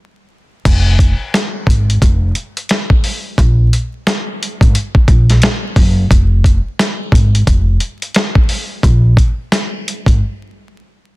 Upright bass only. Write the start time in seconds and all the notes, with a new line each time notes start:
0.65 F1
1.67 G#1
2.02 F1
3.38 A#1
4.61 G#1
4.95 muted upright bass stroke
5.08 A#1
5.76 F#1
6.11 F1
7.12 G#1
7.47 F1
8.84 A#1
10.07 G#1